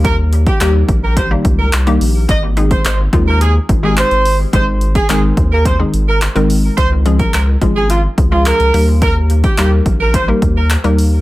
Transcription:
<<
  \new Staff \with { instrumentName = "Horn section" } { \time 4/4 \key aes \major \tempo 4 = 107 bes'16 r8 g'16 g'16 r8 bes'16 c''16 r8 bes'16 r4 | ees''16 r8 c''16 c''16 r8 bes'16 aes'16 r8 aes'16 c''8. r16 | c''16 r8 aes'16 aes'16 r8 bes'16 c''16 r8 bes'16 r4 | c''16 r8 bes'16 bes'16 r8 aes'16 f'16 r8 f'16 bes'8. r16 |
bes'16 r8 g'16 g'16 r8 bes'16 c''16 r8 bes'16 r4 | }
  \new Staff \with { instrumentName = "Synth pluck" } { \time 4/4 \key aes \major <ees g bes ees' g'>8. r16 <ees g bes ees' g'>8. r8 <ees g bes ees' g'>8 r8 <ees g bes ees' g'>8. | r8 <ees aes c' ees' aes'>8 r8 <ees aes c' ees' f'>8. r8 <ees aes c' ees' g'>8. r8 | <ees aes c' ees' aes'>8 r8 <ees aes c' ees' bes'>8. r8 <ees aes c' ees' aes'>8 r8 <ees aes c' ees' bes'>8. | r8 <f aes des' f' aes'>8 r8 <f aes des' f' aes'>8. r8 <f aes des' f' aes'>8. <g bes ees' g' bes'>8~ |
<g bes ees' g' bes'>8. r16 <g bes ees' g' bes'>8. r8 <g bes ees' g' bes'>8 r8 <g bes ees' g' bes'>8. | }
  \new Staff \with { instrumentName = "Analog synth bass" } { \clef bass \time 4/4 \key aes \major ees,4 ees,8 bes,,4 des,8 c,8 bes,,8 | aes,,4 aes,,8 ees,4 aes,,8. aes,,8. | aes,,4 aes,,8 ees,4 aes,,8. aes,,8. | des,4 des,8 aes,,4 des,8. des,16 ees,8~ |
ees,4 ees,8 bes,,4 ees,8. ees,8. | }
  \new DrumStaff \with { instrumentName = "Drums" } \drummode { \time 4/4 <hh bd>8 hh16 <hh bd>16 <hc hh>8 <hh bd>8 <hh bd>8 <hh bd>8 <hc hh>16 hh16 hho8 | <hh bd>8 hh16 <hh bd>16 <hc hh>8 <hh bd>8 hh8 <hh bd>8 <hc hh>16 hh16 hho8 | <hh bd>8 hh16 <hh bd>16 <hc hh>8 <hh bd>8 <hh bd>8 hh8 <hc hh>16 hh16 hho8 | <hh bd>8 hh16 <hh bd>16 <hc hh>8 <hh bd>8 hh8 <hh bd>8 <hc hh>16 hh16 hho8 |
<hh bd>8 hh16 <hh bd>16 <hc hh>8 <hh bd>8 <hh bd>8 <hh bd>8 <hc hh>16 hh16 hho8 | }
>>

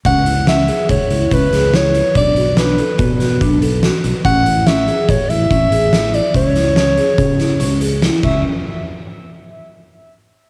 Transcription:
<<
  \new Staff \with { instrumentName = "Soprano saxophone" } { \time 5/4 \key cis \phrygian \tempo 4 = 143 fis''4 e''4 cis''4 b'4 cis''4 | d''4 b'4. r2 r8 | fis''4 e''4 cis''8 e''2 d''8 | cis''1 r8 e''8 |
r1 r4 | }
  \new Staff \with { instrumentName = "Vibraphone" } { \time 5/4 \key cis \phrygian cis'8 e'8 cis'8 gis'4 e'8 cis'8 gis'8 e'4 | d'8 fis'8 d'8 a'4 fis'8 d'8 a'8 fis'4 | cis'8 e'8 cis'8 gis'4 e'8 cis'8 gis'8 e'4 | cis'8 e'8 cis'8 gis'4 e'8 cis'8 gis'8 e'8 cis'8 |
r1 r4 | }
  \new Staff \with { instrumentName = "Fingered electric bass" } { \clef bass \time 5/4 \key cis \phrygian cis,2 cis,16 r16 cis,8 cis,8 cis,4. | b,,2 b,4 b,,4. b,,16 r16 | a,,2 a,,16 r16 a,,8 a,,8 a,,4. | cis,2 cis4 cis,4. cis,8 |
r1 r4 | }
  \new DrumStaff \with { instrumentName = "Drums" } \drummode { \time 5/4 <hh bd>8 hh8 <hh sn>8 hh8 <hh bd>8 hh8 <hh bd>8 <hh sn>8 <hh sn>8 hh8 | <hh bd>8 hh8 <hh sn>8 hh8 <hh bd>8 <hh sn>8 <hh bd>8 hh8 <hh sn>8 hh8 | <hh bd>8 hh8 <hh sn>8 hh8 <hh bd>8 hh8 <hh bd>8 hh8 <hh sn>8 hh8 | <hh bd>8 <hh sn>8 <hh sn>8 hh8 <hh bd>8 <hh sn>8 hh8 hh8 <hh sn>8 <cymc bd>8 |
r4 r4 r4 r4 r4 | }
>>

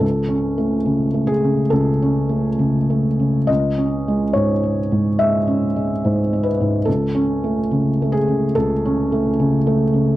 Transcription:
<<
  \new Staff \with { instrumentName = "Felt piano" } { \time 4/4 \key a \lydian \tempo 4 = 71 a'4. gis'8 a'2 | dis''4 cis''4 e''4. b'8 | a'4. gis'8 a'2 | }
  \new Staff \with { instrumentName = "Felt piano" } { \clef bass \time 4/4 \key a \lydian \tuplet 3/2 { cis,8 cis'8 a8 cis8 a8 cis8 cis,8 cis'8 a8 cis8 a8 cis8 } | \tuplet 3/2 { cis,8 cis'8 gis8 gis,8 gis8 gis,8 gis8 cis'8 gis8 gis,8 gis8 gis,8 } | \tuplet 3/2 { cis,8 cis'8 a8 cis8 a8 cis8 cis,8 cis'8 a8 cis8 a8 cis8 } | }
>>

